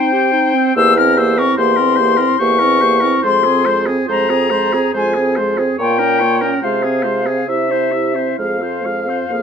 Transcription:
Already playing: french horn C4, clarinet D#4, oboe C5, flute G5
0.12 clarinet G4
0.32 clarinet D#4
0.54 clarinet C4
0.76 bassoon E2, french horn A#3, clarinet G4, oboe C5, flute E6
0.96 french horn C4, clarinet E4, oboe A#4, flute F6
1.17 french horn A#3, clarinet G4, oboe C5, flute E6
1.38 french horn C4, clarinet E4, oboe A#4, flute C#6
1.57 bassoon E2, french horn A#3, clarinet G4, oboe C5, flute C6
1.76 french horn C4, clarinet E4, oboe A#4
1.96 clarinet G4, oboe C5
2.00 french horn A#3
2.17 french horn C4, clarinet E4, oboe A#4
2.38 bassoon E2, french horn A#3, clarinet G4, oboe C5, flute C#6
2.59 french horn C4, clarinet E4, oboe A#4
2.81 french horn A#3, clarinet G4, oboe C5
3.00 french horn C4, clarinet E4, oboe A#4
3.22 bassoon F2, french horn G#3, clarinet F4, oboe C5, flute C6
3.43 french horn C4, clarinet G#4, oboe G#4
3.64 french horn G#3, clarinet F4, oboe C5
3.86 french horn C4, clarinet G#4, oboe G#4
4.06 bassoon F2, french horn G#3, clarinet F4, oboe C5, flute A#5
4.30 french horn C4, clarinet G#4, oboe G#4
4.51 french horn G#3, clarinet F4, oboe C5
4.73 french horn C4, oboe G#4, clarinet G#4
4.93 bassoon F2, french horn G#3, clarinet F4, oboe C5, flute G#5
5.14 french horn C4, oboe G#4, clarinet G#4
5.36 french horn G#3, clarinet F4, oboe C5
5.58 french horn C4, oboe G#4, clarinet G#4
5.78 bassoon A#2, french horn A#3, clarinet F4, oboe C#5, flute G5
5.98 french horn C#4, clarinet C#4, oboe A#4
6.20 french horn A#3, clarinet F4, oboe C#5
6.41 french horn C#4, clarinet C#4, oboe A#4
6.62 bassoon C3, french horn G#3, clarinet F4, oboe C5, flute F5
6.83 french horn C4, oboe G#4, clarinet G#4
7.03 french horn G#3, clarinet F4, oboe C5
7.26 french horn C4, oboe G#4, clarinet G#4
7.48 bassoon C3, french horn E4, clarinet G4, oboe E5, flute E5
7.71 french horn C4, clarinet E4, oboe C5
7.92 french horn E4, clarinet G4, oboe E5
8.15 french horn C4, clarinet E4, oboe C5
8.38 bassoon F2, french horn G#3, clarinet G#4, oboe F5, flute F5
8.61 french horn C4, clarinet F4, oboe C5
8.84 french horn G#3, clarinet G#4, oboe F5
9.07 french horn C4, clarinet F4, oboe C5
9.30 bassoon F2, french horn A#3, clarinet G#4, oboe F5

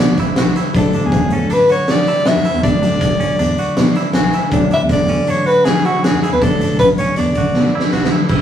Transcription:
Already playing: tine electric piano D3 F#3 A3 D4, clean electric guitar F#4, soprano saxophone D5
0.00 fingered electric bass B2
0.17 clean electric guitar E4, kick, closed hi-hat
0.36 fingered electric bass B1, clean electric guitar F#4, snare, closed hi-hat
0.56 clean electric guitar E4, closed hi-hat
0.73 fingered electric bass B1, tine electric piano D3 F#3 A3 D4, clean electric guitar D4, soprano saxophone A4, kick, closed hi-hat
0.93 fingered electric bass A1, clean electric guitar D4, closed hi-hat
1.04 fingered electric bass E2, soprano saxophone G#4
1.12 kick, closed hi-hat
1.31 clean electric guitar C#4, soprano saxophone A4, closed hi-hat
1.50 fingered electric bass A1, clean electric guitar D4, soprano saxophone B4, closed hi-hat
1.69 clean electric guitar F#4, soprano saxophone C#5, closed hi-hat
1.88 soprano saxophone D5, snare, closed hi-hat
2.07 clean electric guitar E4, closed hi-hat
2.26 clean electric guitar F#4, soprano saxophone E5, snare, closed hi-hat
2.36 fingered electric bass F#2
2.45 clean electric guitar E4, closed hi-hat
2.54 fingered electric bass E2
2.62 fingered electric bass E2, tine electric piano D3 F#3 A3 D4, clean electric guitar D4, soprano saxophone D5, kick, closed hi-hat
2.82 fingered electric bass F#2, clean electric guitar D4, snare, closed hi-hat
2.92 fingered electric bass B1
3.01 kick, closed hi-hat
3.20 clean electric guitar C#4, closed hi-hat
3.39 fingered electric bass E2, clean electric guitar D4, closed hi-hat
3.58 clean electric guitar F#4, closed hi-hat
3.77 fingered electric bass B2, snare, closed hi-hat
3.96 clean electric guitar E4, closed hi-hat
4.13 fingered electric bass B1, clean electric guitar F#4, tine electric piano G#5, snare, closed hi-hat
4.33 clean electric guitar E4, closed hi-hat
4.50 fingered electric bass B1, tine electric piano D3 F#3 A3 D4, clean electric guitar D4, kick, closed hi-hat
4.71 fingered electric bass A1, clean electric guitar D4, soprano saxophone E5, closed hi-hat
4.82 fingered electric bass E2
4.89 soprano saxophone D5, kick, snare, closed hi-hat
5.08 clean electric guitar C#4, closed hi-hat
5.27 fingered electric bass A1, clean electric guitar D4, soprano saxophone C#5, closed hi-hat
5.46 clean electric guitar F#4, soprano saxophone B4, closed hi-hat
5.65 soprano saxophone G#4, snare, closed hi-hat
5.85 clean electric guitar E4, soprano saxophone F#4, closed hi-hat
6.03 clean electric guitar F#4, soprano saxophone G#4, snare, closed hi-hat
6.13 fingered electric bass F#2
6.22 clean electric guitar E4, soprano saxophone G#4, closed hi-hat
6.32 fingered electric bass E2, soprano saxophone B4
6.41 fingered electric bass E2, tine electric piano D3 F#3 A3 D4, clean electric guitar D4, soprano saxophone A4, kick, closed hi-hat
6.60 fingered electric bass F#2, clean electric guitar D4, closed hi-hat
6.70 fingered electric bass B1
6.79 soprano saxophone B4, kick, closed hi-hat
6.98 clean electric guitar C#4, soprano saxophone C#5, closed hi-hat
7.16 fingered electric bass E2, clean electric guitar D4, soprano saxophone D5, closed hi-hat
7.35 clean electric guitar F#4, kick, closed hi-hat
7.54 fingered electric bass B2, snare
7.75 clean electric guitar E4
7.80 snare
7.92 fingered electric bass B1, clean electric guitar F#4, snare
8.05 snare
8.12 clean electric guitar E4
8.29 fingered electric bass B1, clean electric guitar E4, kick, crash

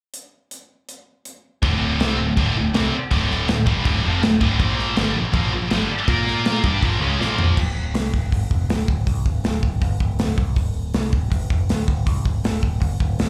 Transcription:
0.14 closed hi-hat
0.51 closed hi-hat
0.89 closed hi-hat
1.25 closed hi-hat
1.62 picked electric bass D1, distorted electric guitar D2 A2 D3, kick, crash
1.99 picked electric bass C2, distorted electric guitar C3 G3 C4, snare, crash
2.18 picked electric bass D1, distorted electric guitar D2 A2
2.37 picked electric bass D1, distorted electric guitar D2 A2 D3, kick, crash
2.55 picked electric bass D1, distorted electric guitar D2 A2
2.74 picked electric bass C2, distorted electric guitar C3 G3 C4, snare, crash
3.11 picked electric bass D1, distorted electric guitar D2 A2 D3, kick, crash
3.31 snare
3.48 picked electric bass D1, distorted electric guitar D2 A2, snare, crash
3.66 picked electric bass G1, distorted electric guitar G2 D3 G3, kick
3.85 picked electric bass D1, distorted electric guitar D2 A2 D3, kick, crash
4.04 picked electric bass F1, distorted electric guitar F2 C3 F3
4.22 picked electric bass D1, distorted electric guitar D2 A2, snare, crash
4.41 picked electric bass D1, distorted electric guitar D2 A2 D3, kick
4.59 picked electric bass A#1, distorted electric guitar A#2 F3 A#3, kick, crash
4.79 snare
4.96 picked electric bass G1, distorted electric guitar G2 D3 G3, snare, crash
5.15 picked electric bass A#1, distorted electric guitar A#2 F3
5.33 picked electric bass A#1, distorted electric guitar A#2 F3 A#3, kick, crash
5.52 picked electric bass A#1, distorted electric guitar A#2 F3
5.71 picked electric bass G1, distorted electric guitar G2 D3 G3, snare, crash
6.08 picked electric bass A#2, distorted electric guitar A#3 F4 A#4, kick, crash
6.27 snare
6.45 snare, crash
6.63 picked electric bass G2, distorted electric guitar G3 D4 G4, kick
6.82 picked electric bass A#1, distorted electric guitar A#2 F3 A#3, kick, crash
7.01 picked electric bass C#2, distorted electric guitar C#3 G#3 C#4
7.19 picked electric bass A#1, distorted electric guitar A#2 F3 A#3, snare
7.39 floor tom
7.57 picked electric bass D1, kick, crash
7.94 picked electric bass C2, snare, open hi-hat
8.14 picked electric bass D1, kick, snare
8.32 picked electric bass G1, kick, open hi-hat
8.51 picked electric bass F1, kick
8.69 picked electric bass D1, snare, open hi-hat
8.88 picked electric bass D1, kick
9.07 picked electric bass C2, kick, open hi-hat
9.26 picked electric bass D1, kick
9.44 picked electric bass D1, snare, open hi-hat
9.63 picked electric bass D1, kick
9.82 picked electric bass G1, kick, open hi-hat
10.00 picked electric bass D1, kick
10.19 picked electric bass D1, snare, open hi-hat
10.38 picked electric bass C2, kick
10.56 picked electric bass D1, kick, open hi-hat
10.94 picked electric bass C2, snare, open hi-hat
11.13 picked electric bass D1, kick
11.31 picked electric bass G1, kick, open hi-hat
11.50 picked electric bass F1, kick
11.69 picked electric bass D1, snare, open hi-hat
11.88 picked electric bass D1, kick
12.06 picked electric bass C2, kick, open hi-hat
12.25 picked electric bass D1, kick
12.44 picked electric bass D1, snare, open hi-hat
12.63 picked electric bass D1, kick
12.82 picked electric bass G1, kick, open hi-hat
13.00 picked electric bass D1, kick
13.19 picked electric bass D1, snare, open hi-hat

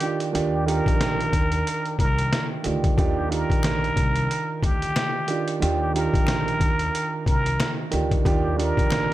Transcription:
Already playing: upright piano F4 G4, muted trumpet G4
0.00 upright piano D#3 D4 F4 G4, closed hi-hat
0.20 closed hi-hat
0.33 upright bass D#2, upright piano D#3 D4 F4 G4, closed hi-hat
0.54 muted trumpet G4
0.66 upright piano D#3 D4 F4 G4, muted trumpet A#4, closed hi-hat
0.86 upright bass A#1, kick, closed hi-hat
1.01 snare, closed hi-hat
1.20 closed hi-hat
1.33 upright bass D#2, kick, closed hi-hat
1.52 closed hi-hat
1.67 closed hi-hat
1.86 closed hi-hat
1.99 upright bass C2, muted trumpet A#4, kick, closed hi-hat
2.18 closed hi-hat
2.33 snare, closed hi-hat
2.64 upright bass D2, upright piano D#3 D4 F4 G4, closed hi-hat
2.84 kick, closed hi-hat
2.97 upright bass D#2, upright piano D#3 D4 F4 G4, kick, closed hi-hat
3.17 muted trumpet G4
3.29 upright piano D#3 D4 F4 G4, muted trumpet A#4, closed hi-hat
3.50 upright bass A#1, kick, closed hi-hat
3.63 finger snap, snare, closed hi-hat
3.84 closed hi-hat
3.97 upright bass C2, kick, closed hi-hat
4.16 closed hi-hat
4.31 closed hi-hat
4.63 upright bass D2, muted trumpet G4, kick, closed hi-hat
4.82 closed hi-hat
4.96 finger snap, snare, closed hi-hat
5.28 upright piano D#3 D4 F4 G4, closed hi-hat
5.48 closed hi-hat
5.60 upright bass D#2, upright piano D#3 D4 F4 G4, closed hi-hat
5.80 muted trumpet G4
5.94 upright piano D#3 D4 F4 G4, muted trumpet A#4, closed hi-hat
6.14 upright bass A#1, kick, closed hi-hat
6.27 finger snap, snare, closed hi-hat
6.48 closed hi-hat
6.60 upright bass D#2, kick, closed hi-hat
6.79 closed hi-hat
6.95 closed hi-hat
7.26 upright bass C2, muted trumpet A#4, kick, closed hi-hat
7.46 closed hi-hat
7.60 finger snap, snare, closed hi-hat
7.91 upright bass D2, upright piano D#3 D4 F4 G4, closed hi-hat
8.11 kick, closed hi-hat
8.25 upright bass D#2, upright piano D#3 D4 F4 G4, kick, closed hi-hat
8.43 muted trumpet G4
8.56 upright piano D#3 D4 F4 G4, muted trumpet A#4, closed hi-hat
8.77 upright bass A#1, kick, closed hi-hat
8.90 finger snap, snare, closed hi-hat

